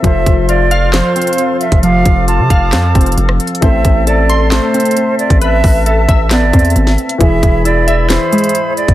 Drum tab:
HH |x-----------x-----------x-----------x-----------x-----------x--x--x--x--x-----------x-----x-----|x-----------x-----------x-----------x-----------x-----------x--x--x--x--x-----------x---x---x---|x-----------x-----------x-----------x-----------x-----------x--x--x--x--x-----------x-----x-----|x-----------o-----------x-----------x-----------x-----------x--x--x--x--x-----------x-----x-----|
CP |------------------------------------------------x-----------------------------------------------|------------------------------------------------x-----------------------------------------------|------------------------------------------------x-----------------------------------------------|------------------------------------------------x-----------------------------------------------|
SD |------------------------------------------------o-----------------------------------------------|------------------------------------------------o-----------------------------r-----------------|------------------------------------------------o-----------------------------------------------|------------------------------------------------o-----------------------------o-----------------|
BD |o-----------o-----------------------------------------------------------------------------o-----|------------o-----------------------o-----------------------o-----------------------------------|o-----------o-----------------------------------------------------------------------------o-----|------------o-----------------------o-----------------------o-----------------------------------|

HH |x-----------x-----------x-----------x-----------x-----------x--x--x--x--x-----------x-----x-----|
CP |------------------------------------------------x-----------------------------------------------|
SD |------------------------------------------------o-----------------------------------------------|
BD |o-----------o-----------------------------------------------------------------------------o-----|